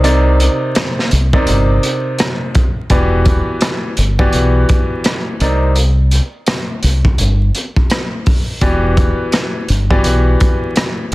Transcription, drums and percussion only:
0.04 closed hi-hat
0.40 closed hi-hat
0.75 cross-stick, snare, closed hi-hat
0.99 snare
1.11 closed hi-hat
1.33 kick
1.47 closed hi-hat
1.83 closed hi-hat
2.18 cross-stick, snare, closed hi-hat
2.55 kick, closed hi-hat
2.90 kick, closed hi-hat
3.25 kick, closed hi-hat
3.61 cross-stick, snare, closed hi-hat
3.97 closed hi-hat
4.19 kick
4.32 closed hi-hat
4.69 kick, closed hi-hat
5.04 cross-stick, snare, closed hi-hat
5.40 closed hi-hat
5.76 closed hi-hat
6.11 closed hi-hat
6.46 cross-stick, snare, closed hi-hat
6.83 closed hi-hat
7.05 kick
7.18 closed hi-hat
7.55 closed hi-hat
7.76 kick
7.90 cross-stick, snare, closed hi-hat
8.26 kick, open hi-hat
8.61 kick, closed hi-hat
8.97 kick, closed hi-hat
9.32 cross-stick, snare, closed hi-hat
9.68 closed hi-hat
9.91 kick
10.04 closed hi-hat
10.40 kick, closed hi-hat
10.76 cross-stick, snare, closed hi-hat

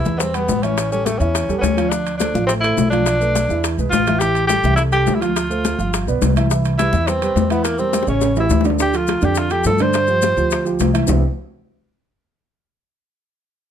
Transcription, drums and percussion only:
0.05 high bongo, high conga, maracas
0.20 high bongo, high timbale, maracas
0.34 high bongo, high conga, high timbale, maracas
0.49 high bongo, low bongo, high conga, low timbale, maracas
0.63 high bongo, high conga, high timbale, maracas
0.78 high bongo, high timbale, maracas
0.92 high conga, maracas
1.06 high bongo, high conga, high timbale, low timbale, maracas
1.21 high bongo, maracas
1.35 high bongo, high conga, high timbale, maracas
1.49 high bongo, high conga, maracas
1.63 high bongo, low bongo, high conga, high timbale, low timbale, maracas
1.77 high bongo, high conga, high timbale, maracas
1.91 high bongo, high conga, maracas
2.07 high conga, high timbale, maracas
2.20 high bongo, high conga, high timbale, low timbale, maracas
2.35 high bongo, high conga, maracas
2.49 high bongo, high conga, high timbale, maracas
2.63 high bongo, high conga, high timbale, maracas
2.78 high bongo, low bongo, high conga, low timbale, maracas
2.92 high bongo, high conga, high timbale, maracas
3.06 high bongo, high conga, high timbale, maracas
3.21 high conga, maracas
3.35 high bongo, high conga, high timbale, low timbale, maracas
3.50 high bongo, maracas
3.64 high bongo, high conga, high timbale, maracas
3.79 high bongo, high conga, maracas
3.92 high bongo, low bongo, high conga, high timbale, low timbale, maracas
4.07 high bongo, high conga, high timbale, maracas
4.21 high bongo, high conga, maracas
4.35 high conga, high timbale, maracas
4.49 high bongo, high conga, high timbale, low timbale, maracas
4.63 high bongo, high conga, maracas
4.77 high bongo, high timbale, maracas
4.92 high bongo, high conga, high timbale, maracas
5.07 high bongo, low bongo, high conga, low timbale, maracas
5.21 high bongo, high conga, high timbale, maracas
5.36 high bongo, high timbale, maracas
5.51 high conga, maracas
5.65 high bongo, high conga, high timbale, low timbale, maracas
5.79 high bongo, high conga, maracas
5.94 high bongo, high conga, high timbale, maracas
6.07 high bongo, high conga, maracas
6.22 high bongo, low bongo, high conga, high timbale, low timbale, maracas
6.36 high bongo, high conga, high timbale, maracas
6.51 high bongo, maracas
6.65 high conga, high timbale, maracas
6.79 high bongo, high conga, high timbale, low timbale, maracas
6.93 high bongo, high conga, maracas
7.07 high bongo, high timbale, maracas
7.22 high bongo, high conga, high timbale, maracas
7.36 high bongo, low bongo, high conga, low timbale, maracas
7.50 high bongo, high conga, high timbale, maracas
7.65 high bongo, high timbale, maracas
7.78 high conga, maracas
7.93 high bongo, high conga, high timbale, low timbale, maracas
8.03 high bongo
8.07 high conga, maracas
8.21 high bongo, high conga, high timbale, maracas
8.36 high conga, low timbale, maracas
8.50 low bongo, high conga, low timbale, maracas
8.61 low bongo, maracas
8.65 high conga, low timbale
8.70 low bongo
8.79 high bongo, maracas
8.93 high conga, high timbale, maracas
9.07 high bongo, high conga, high timbale, low timbale, maracas
9.21 high bongo, high conga, maracas
9.35 high bongo, high conga, high timbale, maracas
9.50 high bongo, high conga, high timbale, maracas
9.64 high bongo, low bongo, high conga, low timbale, maracas
9.78 high bongo, high conga, high timbale, maracas
9.93 high bongo, high conga, high timbale, maracas
10.07 high conga, maracas
10.22 high bongo, high conga, high timbale, low timbale, maracas
10.37 high bongo, high conga, maracas
10.51 high bongo, high conga, high timbale, maracas
10.66 high bongo, high conga, maracas
10.79 high bongo, low bongo, high conga, high timbale, low timbale, maracas
10.95 high bongo, high conga, high timbale, maracas
11.07 low bongo, low conga, low timbale, maracas

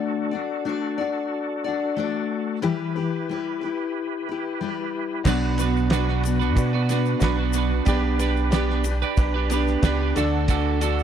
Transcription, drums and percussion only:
5.25 kick, crash, shaker
5.58 ride, shaker
5.77 shaker
5.90 snare, ride, shaker
6.08 snare
6.23 ride, shaker
6.41 shaker
6.56 kick, ride, shaker
6.89 snare, ride, shaker
7.06 shaker
7.21 kick, snare, ride, shaker
7.53 ride, shaker
7.86 kick, ride, shaker
8.19 ride, shaker
8.37 shaker
8.52 snare, ride, shaker
8.70 snare
8.84 ride, shaker
9.02 shaker
9.17 kick, ride, shaker
9.50 ride, shaker
9.67 snare, shaker
9.83 kick, snare, ride, shaker
10.16 ride, shaker
10.48 kick, ride, shaker
10.81 ride, shaker
10.99 shaker

